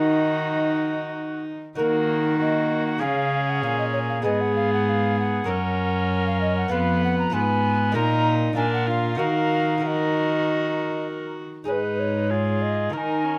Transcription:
Already playing: lute D#3 D#4 F#4 A#4, cello D#3, viola D#4, cor anglais F#4, recorder D#5
1.75 cello D#3, lute D#3 D#4 F#4 A#4, viola A#3, cor anglais F#4, recorder A#4
2.39 viola A#3, cor anglais F#4, recorder D#5
2.87 recorder F#5
2.98 lute C#3 G#3 G#4 C#5, cello C#3, viola C#4, cor anglais G#4, recorder F5
3.49 recorder F#5
3.63 cello A#2, lute A#2, recorder F5
3.79 recorder D#5
3.93 recorder C#5
4.09 recorder F5
4.22 cello G#2, lute G#2 B3 G#4 B4, viola B3, cor anglais G#4, recorder D#5
4.41 recorder F#5
4.56 recorder F5
4.73 recorder F#5
4.89 recorder F5
5.19 recorder F#5
5.44 lute F#2 A#3 A#4 C#5
5.48 cello F#2, viola C#4, cor anglais A#4
6.27 recorder F5
6.41 recorder D#5
6.57 recorder F#5
6.68 cello F2, lute F2 B3 F4 B4, viola B3, cor anglais B4, recorder F5
7.04 recorder F#5
7.19 recorder A#5
7.30 cello G#2, lute G#2 B3 F4 B4, viola B3, recorder G#5
7.34 cor anglais B4
7.92 cello A#2, lute A#2 D#4 F4 A#4, viola D#4, cor anglais A#4, recorder A#5
8.53 cello A#2, lute A#2 D4 F4 A#4, viola D4, cor anglais A#4, recorder G#5
8.73 recorder F#5
8.87 viola F4, recorder F5
9.15 cello D#3, lute D#3 D#4 F#4 A#4, cor anglais A#4, recorder F5
9.19 viola F#4
9.78 lute D#4 F#4 A#4, viola F#4, cor anglais A#4
9.82 recorder F5
9.87 recorder D#5
11.64 cello G#2, lute G#2 D#4 G#4 B4, viola D#4, recorder C#5
11.69 cor anglais B4, recorder B4
12.00 recorder C#5
12.30 viola F4, cor anglais G#4
12.62 recorder D#5
12.89 cello D#3, lute D#3 D#4 A#4, viola D#4, cor anglais A#4, recorder A#5
12.98 recorder G#5
13.24 viola C#4

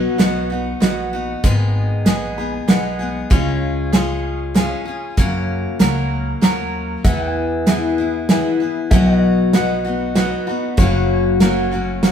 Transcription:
Already playing: steel-string acoustic guitar B2 F#3 B3 D#4 F#4
0.18 upright bass B1, steel-string acoustic guitar F#3 B3 D#4 F#4, upright piano F#4 B4 D#5 F#5, snare, closed hi-hat
0.50 steel-string acoustic guitar B3 D#4 F#4
0.80 upright bass A#1, steel-string acoustic guitar F#3 B3 D#4 F#4, upright piano F#4 B4 D#5 F#5, snare, closed hi-hat
1.13 steel-string acoustic guitar B3 D#4 F#4
1.44 upright bass G#1, steel-string acoustic guitar G#2 D#3 G#3 B3 D#4 G#4, kick, closed hi-hat
2.05 upright bass A#1, steel-string acoustic guitar G#3 B3 D#4, upright piano G#4 B4 D#5 G#5, snare, closed hi-hat
2.10 steel-string acoustic guitar G#4
2.38 steel-string acoustic guitar G#3 B3 D#4 G#4, upright piano B5
2.52 upright piano G#5
2.68 upright bass B1, steel-string acoustic guitar G#3 B3 D#4 G#4, upright piano G#4 B4 D#5 F#5, snare, closed hi-hat
2.99 steel-string acoustic guitar G#3 B3 D#4 G#4
3.30 upright bass C#2, steel-string acoustic guitar C#3 G#3 C#4 F4 G#4, kick, closed hi-hat
3.92 steel-string acoustic guitar G#3 C#4 F4 G#4, upright piano G#4 C#5 F5 G#5, snare, closed hi-hat
4.54 steel-string acoustic guitar G#3 C#4 F4 G#4, upright piano G#4 C#5 F5 G#5, snare, closed hi-hat
4.85 steel-string acoustic guitar C#4 F4 G#4
5.17 steel-string acoustic guitar F#2 C#3 F#3 A#3 C#4 A#4, upright bass F#2, kick, closed hi-hat
5.79 upright bass C#2, steel-string acoustic guitar F#3 A#3 C#4 A#4, upright piano A#4 C#5 F#5 A#5, snare, closed hi-hat
6.41 upright bass D#2, steel-string acoustic guitar F#3 A#3 C#4 A#4, upright piano A#4 C#5 F#5 A#5, snare, closed hi-hat
7.04 upright bass E2, steel-string acoustic guitar E3 B3 E4 G#4, pedal steel guitar E5 F#5, kick, closed hi-hat
7.30 pedal steel guitar G#5
7.66 steel-string acoustic guitar E3 B3 E4 G#4, upright piano G#4 B4 E5 G#5, snare, closed hi-hat
7.98 steel-string acoustic guitar B3 E4 G#4
8.29 steel-string acoustic guitar E3 B3 E4 G#4, upright piano G#4 B4 E5 G#5, snare, closed hi-hat
8.60 steel-string acoustic guitar B3 E4 G#4
8.91 upright bass B1, steel-string acoustic guitar B2 F#3 B3 D#4 F#4, pedal steel guitar E5 G#5, kick, closed hi-hat
9.11 pedal steel guitar D#5
9.17 pedal steel guitar F#5
9.53 steel-string acoustic guitar F#3 B3 D#4, upright piano F#4 B4 D#5 F#5, snare, closed hi-hat
9.57 steel-string acoustic guitar F#4
9.85 steel-string acoustic guitar B3 D#4 F#4
10.15 steel-string acoustic guitar F#3 B3 D#4, upright piano F#4 B4 D#5 F#5, snare, closed hi-hat
10.20 steel-string acoustic guitar F#4
10.47 steel-string acoustic guitar B3 D#4 F#4, upright piano B5
10.77 upright bass F#1, steel-string acoustic guitar F#2 C#3 F#3 A#3 C#4, pedal steel guitar C#5 F#5, kick, closed hi-hat
10.82 steel-string acoustic guitar F#4
11.40 steel-string acoustic guitar F#3 A#3 C#4 F#4, upright piano F#4 A#4 C#5 F#5, snare, closed hi-hat
11.71 steel-string acoustic guitar F#3 A#3 C#4 F#4
12.03 steel-string acoustic guitar F#3 A#3 C#4, upright piano F#4 A#4 C#5 F#5, snare, closed hi-hat
12.07 steel-string acoustic guitar F#4

